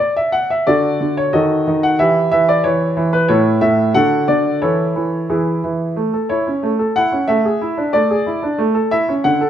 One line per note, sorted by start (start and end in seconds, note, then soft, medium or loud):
0.00 0.16 D5 medium
0.17 0.33 E5 medium
0.32 0.50 F#5 medium
0.50 0.67 E5 medium
0.67 0.99 D3 soft
0.67 1.30 F#4 soft
0.67 1.30 A4 soft
0.67 1.13 D5 medium
1.01 1.33 D3 soft
1.17 1.34 C#5 medium
1.33 1.66 D#3 soft
1.33 1.95 F#4 soft
1.33 1.95 A4 soft
1.33 1.83 D#5 medium
1.67 1.99 D#3 soft
1.83 2.00 F#5 medium
1.99 2.31 E3 soft
1.99 3.26 E4 soft
1.99 3.26 G4 soft
1.99 2.29 E5 medium
2.32 2.63 E3 soft
2.32 2.48 E5 medium
2.49 2.65 D5 medium
2.64 2.95 E3 soft
2.64 3.13 C#5 medium
2.97 3.28 E3 soft
3.13 3.29 B4 medium
3.28 3.60 A2 medium
3.28 3.91 E4 soft
3.28 3.91 A4 soft
3.28 3.62 C#5 medium
3.61 3.94 A2 soft
3.61 3.91 E5 medium
3.94 4.27 D3 medium
3.94 4.58 F#4 soft
3.94 4.58 A4 soft
3.94 4.25 F#5 medium
4.28 4.61 D3 soft
4.28 4.59 D5 medium
4.62 4.94 E3 soft
4.62 5.26 E4 soft
4.62 5.26 A4 soft
4.62 5.30 C#5 medium
4.96 5.28 E3 soft
5.30 5.62 E3 soft
5.30 5.94 E4 soft
5.30 5.94 G#4 soft
5.64 5.97 E3 soft
5.96 6.13 A3 soft
6.13 6.32 A4 soft
6.29 6.48 E4 soft
6.29 6.69 C#5 medium
6.47 6.65 C#4 soft
6.63 6.80 A3 soft
6.79 6.97 A4 soft
6.96 7.14 E4 soft
6.96 7.29 F#5 medium
7.12 7.29 C#4 soft
7.28 7.44 A3 soft
7.28 7.93 E5 medium
7.45 7.62 G#4 soft
7.62 7.79 E4 soft
7.78 7.95 D4 soft
7.93 8.10 A3 soft
7.93 8.58 D5 medium
8.10 8.27 G#4 soft
8.26 8.43 E4 soft
8.43 8.59 D4 soft
8.58 8.74 A3 medium
8.75 8.92 A4 soft
8.91 9.09 E4 soft
8.91 9.11 E5 medium
9.09 9.25 C#4 soft
9.24 9.40 D3 medium
9.24 9.50 F#5 medium
9.41 9.50 A4 soft